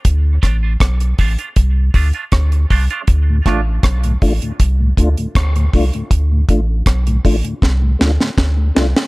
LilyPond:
<<
  \new Staff \with { instrumentName = "Clean electric guitar" } { \time 4/4 \key d \dorian \tempo 4 = 79 r8 <a d' f'>16 <a d' f'>16 r8 <a d' f'>16 <a d' f'>16 r8 <a d' f'>16 <a d' f'>16 r8 <a d' f'>16 <a d' f'>16 | r8 <a d' f'>16 r2. r16 | r1 | }
  \new Staff \with { instrumentName = "Tonewheel organ" } { \time 4/4 \key d \dorian r4. <a f'>8 r8 <a d' f'>8 r8 <a d' f'>8 | r8 <a d' f'>8 r8 <a d' f'>8 r8 <a d' f'>8 r8 <a d' f'>8 | r8 <a d' f'>8 r8 <a d' f'>8 r8 <a d' f'>8 r8 <a d' f'>8 | }
  \new Staff \with { instrumentName = "Tonewheel organ" } { \clef bass \time 4/4 \key d \dorian r1 | r16 <d, a,>16 r8. <d, a,>16 r16 <d, a,>16 r16 <d, a,>16 r16 <d, a,>16 r16 <d, a,>16 r16 <d, a,>16 | r16 <d, a,>16 r8. <d, a,>16 r16 <d, a,>16 r16 <d, a,>16 r16 <d, a,>16 r16 <d, a,>16 r16 <d, a,>16 | }
  \new Staff \with { instrumentName = "Sub bass" } { \clef bass \time 4/4 \key d \dorian d,8 a,,8 b,,8 a,,16 r16 c,8 d,16 r16 d,8 c,16 r16 | d,8 a,,8 b,,8 a,,16 r16 c,8 d,16 r16 d,8 c,16 r16 | d,8 a,,8 b,,8 a,,16 r16 c,8 d,16 r16 d,8 c,16 r16 | }
  \new DrumStaff \with { instrumentName = "Drums" } \drummode { \time 4/4 <hh bd>8 <hh bd ss>8 <hh bd ss>16 hh16 <hho bd>16 hh16 <hh bd>8 <hho bd>16 hh16 <hh bd ss>16 hh16 <hho bd>16 hh16 | <hh bd>8 <hh bd ss>8 <hh bd ss>16 hh16 <hho bd>16 hh16 <hh bd>8 <hh bd>16 hh16 <hh bd ss>16 hh16 <hho bd>16 hh16 | <hh bd>8 <hh bd>8 <hh bd ss>16 hh16 <hho bd>16 hh16 <bd sn>8 sn16 sn16 <bd sn>8 sn16 sn16 | }
>>